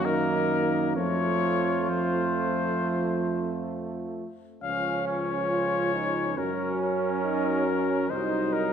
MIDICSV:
0, 0, Header, 1, 6, 480
1, 0, Start_track
1, 0, Tempo, 916031
1, 504, Time_signature, 4, 2, 24, 8
1, 2424, Tempo, 869565
1, 4689, End_track
2, 0, Start_track
2, 0, Title_t, "Trumpet"
2, 0, Program_c, 0, 56
2, 28, Note_on_c, 0, 70, 92
2, 502, Note_off_c, 0, 70, 0
2, 506, Note_on_c, 0, 73, 96
2, 992, Note_on_c, 0, 72, 77
2, 1000, Note_off_c, 0, 73, 0
2, 1951, Note_off_c, 0, 72, 0
2, 2425, Note_on_c, 0, 77, 98
2, 2649, Note_off_c, 0, 77, 0
2, 2671, Note_on_c, 0, 73, 94
2, 3390, Note_on_c, 0, 70, 82
2, 3398, Note_off_c, 0, 73, 0
2, 3628, Note_off_c, 0, 70, 0
2, 3634, Note_on_c, 0, 70, 88
2, 4341, Note_on_c, 0, 72, 93
2, 4349, Note_off_c, 0, 70, 0
2, 4578, Note_on_c, 0, 70, 88
2, 4586, Note_off_c, 0, 72, 0
2, 4689, Note_off_c, 0, 70, 0
2, 4689, End_track
3, 0, Start_track
3, 0, Title_t, "Trombone"
3, 0, Program_c, 1, 57
3, 25, Note_on_c, 1, 63, 83
3, 505, Note_off_c, 1, 63, 0
3, 508, Note_on_c, 1, 65, 81
3, 2170, Note_off_c, 1, 65, 0
3, 2426, Note_on_c, 1, 61, 80
3, 2886, Note_off_c, 1, 61, 0
3, 2910, Note_on_c, 1, 65, 66
3, 3154, Note_on_c, 1, 63, 69
3, 3162, Note_off_c, 1, 65, 0
3, 3386, Note_off_c, 1, 63, 0
3, 3389, Note_on_c, 1, 61, 74
3, 3857, Note_off_c, 1, 61, 0
3, 3868, Note_on_c, 1, 63, 76
3, 4099, Note_off_c, 1, 63, 0
3, 4105, Note_on_c, 1, 61, 71
3, 4337, Note_off_c, 1, 61, 0
3, 4339, Note_on_c, 1, 63, 81
3, 4689, Note_off_c, 1, 63, 0
3, 4689, End_track
4, 0, Start_track
4, 0, Title_t, "Flugelhorn"
4, 0, Program_c, 2, 56
4, 25, Note_on_c, 2, 58, 69
4, 495, Note_off_c, 2, 58, 0
4, 507, Note_on_c, 2, 57, 62
4, 984, Note_off_c, 2, 57, 0
4, 997, Note_on_c, 2, 57, 67
4, 2235, Note_off_c, 2, 57, 0
4, 2423, Note_on_c, 2, 61, 67
4, 3366, Note_off_c, 2, 61, 0
4, 3391, Note_on_c, 2, 61, 73
4, 4323, Note_off_c, 2, 61, 0
4, 4338, Note_on_c, 2, 63, 71
4, 4689, Note_off_c, 2, 63, 0
4, 4689, End_track
5, 0, Start_track
5, 0, Title_t, "French horn"
5, 0, Program_c, 3, 60
5, 23, Note_on_c, 3, 51, 72
5, 507, Note_on_c, 3, 53, 59
5, 515, Note_off_c, 3, 51, 0
5, 991, Note_off_c, 3, 53, 0
5, 995, Note_on_c, 3, 53, 61
5, 2234, Note_off_c, 3, 53, 0
5, 2425, Note_on_c, 3, 53, 59
5, 3389, Note_on_c, 3, 54, 70
5, 3397, Note_off_c, 3, 53, 0
5, 4337, Note_off_c, 3, 54, 0
5, 4341, Note_on_c, 3, 54, 63
5, 4689, Note_off_c, 3, 54, 0
5, 4689, End_track
6, 0, Start_track
6, 0, Title_t, "Tuba"
6, 0, Program_c, 4, 58
6, 0, Note_on_c, 4, 42, 84
6, 507, Note_on_c, 4, 41, 70
6, 514, Note_off_c, 4, 42, 0
6, 2255, Note_off_c, 4, 41, 0
6, 2427, Note_on_c, 4, 37, 72
6, 3392, Note_on_c, 4, 42, 65
6, 3401, Note_off_c, 4, 37, 0
6, 4345, Note_on_c, 4, 36, 72
6, 4353, Note_off_c, 4, 42, 0
6, 4689, Note_off_c, 4, 36, 0
6, 4689, End_track
0, 0, End_of_file